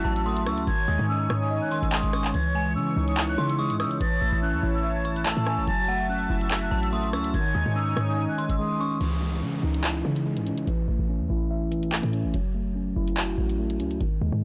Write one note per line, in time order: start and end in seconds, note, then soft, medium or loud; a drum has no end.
0.00 0.05 F#3 medium
0.00 0.24 A3 medium
0.00 0.45 C#4 medium
0.00 0.67 E4 loud
0.00 0.66 F#4 medium
0.00 0.67 F#4 medium
0.00 0.66 E5 medium
0.00 0.64 A5 medium
0.00 0.13 F#6 medium
0.04 0.48 A1 loud
0.04 0.67 F#3 medium
0.04 0.24 A5 medium
0.16 0.24 E6 medium
0.16 closed hi-hat medium
0.25 0.67 A3 medium
0.25 0.46 C6 medium
0.25 0.43 D#6 medium
0.37 closed hi-hat medium
0.46 0.66 C#2 loud
0.46 0.67 C#4 medium
0.46 0.66 C#6 medium
0.46 0.64 E6 medium
0.46 cross-stick medium
0.46 closed hi-hat medium
0.58 closed hi-hat medium
0.67 0.87 G#1 loud
0.67 1.70 D#3 medium
0.67 2.32 D#4 medium
0.67 2.32 C#5 medium
0.67 2.32 G#5 medium
0.67 1.06 G#6 loud
0.67 closed hi-hat medium
0.88 0.99 D#2 loud
0.88 1.91 G#3 medium
0.88 1.08 D#6 medium
0.99 1.29 G#2 loud
1.09 2.12 C#4 medium
1.09 1.39 E6 medium
1.30 1.60 G#2 loud
1.30 2.34 D#4 medium
1.30 cross-stick loud
1.41 1.58 D#6 medium
1.51 2.34 D#5 medium
1.62 1.79 F#6 medium
1.71 2.34 D#3 medium
1.71 2.11 C6 medium
1.71 closed hi-hat medium
1.82 2.03 G#1 loud
1.82 1.91 E6 medium
1.82 closed hi-hat medium
1.92 2.34 G#3 medium
1.92 2.32 D#6 medium
1.92 clap loud
1.92 closed hi-hat medium
2.03 2.33 G#1 loud
2.03 closed hi-hat medium
2.13 2.34 C#4 medium
2.13 2.33 C#6 medium
2.13 cross-stick medium
2.13 closed hi-hat medium
2.13 open hi-hat medium
2.24 clap medium
2.24 closed hi-hat medium
2.34 2.77 C#2 loud
2.34 3.37 E3 medium
2.34 3.99 E3 medium
2.34 3.99 C#5 medium
2.34 3.99 C#6 medium
2.34 2.73 G#6 loud
2.34 closed hi-hat medium
2.55 3.58 G#3 medium
2.55 2.75 G#5 medium
2.76 2.95 C#3 loud
2.76 3.78 C#4 medium
2.76 3.06 E6 medium
2.96 3.36 C#2 loud
2.96 4.01 D#4 loud
3.08 3.25 D#6 medium
3.08 closed hi-hat medium
3.17 4.01 E4 medium
3.17 clap loud
3.29 3.46 F#6 medium
3.38 3.71 C#3 loud
3.38 3.99 E3 medium
3.38 3.58 C6 medium
3.49 3.57 E6 medium
3.49 closed hi-hat medium
3.59 4.01 G#3 medium
3.59 3.79 C#6 medium
3.59 3.76 D#6 medium
3.70 3.87 G#2 loud
3.70 closed hi-hat medium
3.80 4.01 C#4 medium
3.80 4.00 D#6 medium
3.80 3.97 E6 medium
3.80 cross-stick medium
3.80 closed hi-hat medium
3.85 4.00 C#3 loud
3.91 closed hi-hat medium
4.01 4.21 A1 loud
4.01 5.04 E3 medium
4.01 5.66 E4 medium
4.01 5.66 C#5 medium
4.01 7.31 A5 medium
4.01 4.40 A6 loud
4.01 closed hi-hat medium
4.21 4.32 A1 loud
4.21 5.24 A3 medium
4.21 4.41 E6 medium
4.33 4.55 A1 loud
4.42 5.45 C#4 medium
4.42 4.72 F#6 medium
4.53 4.63 E2 loud
4.63 5.34 A1 loud
4.63 5.67 E4 loud
4.74 4.92 E6 medium
4.84 5.67 E5 medium
4.95 5.12 G#6 medium
5.05 5.67 E3 medium
5.05 5.25 C#6 medium
5.05 closed hi-hat medium
5.16 5.24 F#6 medium
5.16 closed hi-hat medium
5.26 5.67 A3 loud
5.26 5.45 A5 medium
5.26 5.65 E6 medium
5.26 clap loud
5.26 closed hi-hat medium
5.37 5.59 A2 loud
5.37 closed hi-hat medium
5.46 5.67 C#4 medium
5.46 5.66 G#5 medium
5.46 cross-stick medium
5.46 closed hi-hat medium
5.58 5.67 G#1 loud
5.67 6.27 F#1 loud
5.67 6.70 F#3 medium
5.67 7.32 F#4 medium
5.67 7.32 E5 medium
5.67 6.07 A6 loud
5.67 closed hi-hat medium
5.88 6.91 A3 medium
5.88 6.08 F#5 medium
6.09 7.12 C#4 medium
6.09 6.39 F#6 medium
6.30 6.70 F#1 loud
6.30 7.34 E4 medium
6.41 6.58 E6 medium
6.41 closed hi-hat medium
6.51 7.34 F#4 medium
6.51 clap loud
6.62 6.79 F#6 medium
6.71 7.15 A1 loud
6.71 7.34 F#3 medium
6.71 6.91 A5 medium
6.83 6.91 E6 medium
6.83 closed hi-hat medium
6.92 7.34 A3 medium
6.92 7.12 C6 medium
6.92 7.10 D#6 medium
7.03 closed hi-hat medium
7.13 7.33 C#2 loud
7.13 7.34 C#4 medium
7.13 7.33 C#6 medium
7.13 7.31 E6 medium
7.13 cross-stick medium
7.13 closed hi-hat medium
7.24 closed hi-hat medium
7.34 7.54 G#1 loud
7.34 8.37 D#3 medium
7.34 8.99 D#4 medium
7.34 8.99 C#5 medium
7.34 8.99 G#5 loud
7.34 7.73 G#6 loud
7.34 closed hi-hat medium
7.55 7.65 D#2 loud
7.55 8.58 G#3 medium
7.55 7.74 D#6 medium
7.66 7.95 G#2 loud
7.76 8.79 C#4 medium
7.76 8.06 E6 medium
7.97 8.27 G#2 loud
7.97 9.01 D#4 medium
7.97 cross-stick medium
8.08 8.25 D#6 medium
8.17 9.01 D#5 medium
8.28 8.46 F#6 medium
8.38 9.01 D#3 medium
8.38 8.77 C6 medium
8.38 closed hi-hat medium
8.49 8.59 G#1 loud
8.49 8.57 E6 medium
8.49 closed hi-hat medium
8.59 9.01 G#3 medium
8.59 8.98 D#6 medium
8.80 9.01 C#4 medium
8.80 9.00 C#6 medium
9.01 9.44 C#2 loud
9.01 10.04 E3 medium
9.01 closed hi-hat medium
9.01 crash medium
9.01 downlifter medium
9.22 10.25 G#3 medium
9.42 9.62 C#3 loud
9.42 10.45 C#4 medium
9.63 10.03 C#2 loud
9.63 10.67 D#4 loud
9.74 closed hi-hat medium
9.84 10.67 E4 medium
9.84 clap loud
10.05 10.38 C#3 loud
10.05 10.66 E3 medium
10.16 closed hi-hat medium
10.26 10.67 G#3 medium
10.37 10.54 G#2 loud
10.37 closed hi-hat medium
10.47 10.67 C#4 medium
10.47 closed hi-hat medium
10.52 10.67 C#3 medium
10.58 closed hi-hat medium
10.67 10.87 A1 loud
10.67 11.70 E3 medium
10.67 closed hi-hat medium
10.88 10.99 A1 loud
10.88 11.91 A3 medium
10.99 11.22 A1 loud
11.09 12.12 C#4 medium
11.20 11.29 E2 loud
11.30 12.00 A1 loud
11.30 12.34 E4 medium
11.51 12.34 E5 medium
11.71 12.34 E3 medium
11.71 closed hi-hat medium
11.83 closed hi-hat medium
11.92 12.34 A3 medium
11.92 clap loud
11.92 closed hi-hat medium
12.03 12.26 A2 loud
12.03 closed hi-hat medium
12.13 12.34 C#4 medium
12.13 closed hi-hat medium
12.24 12.33 G#1 loud
12.34 12.94 F#1 loud
12.34 13.37 F#3 medium
12.34 closed hi-hat medium
12.55 13.58 A3 medium
12.76 13.79 C#4 medium
12.96 13.36 F#1 loud
12.96 14.01 E4 loud
13.08 closed hi-hat medium
13.17 14.01 F#4 medium
13.17 clap loud
13.38 13.81 A1 loud
13.38 14.01 F#3 medium
13.49 closed hi-hat medium
13.59 14.01 A3 medium
13.70 closed hi-hat medium
13.80 14.00 C#2 loud
13.80 14.01 C#4 medium
13.80 closed hi-hat medium
13.91 closed hi-hat medium
14.01 14.21 G#1 loud
14.01 14.44 D#3 medium
14.01 closed hi-hat medium
14.21 14.32 D#2 loud
14.21 14.44 G#3 medium
14.32 14.44 G#2 loud